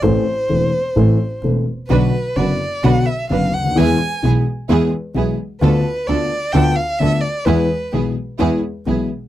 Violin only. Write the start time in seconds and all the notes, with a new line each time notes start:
0.03 C5
1.90 B4
2.36 D5
2.84 F#5
3.06 E5
3.30 F5
3.54 F#5
3.77 G#5
5.62 B4
6.07 D5
6.52 G5
6.76 F5
6.99 E5
7.21 D5
7.45 B4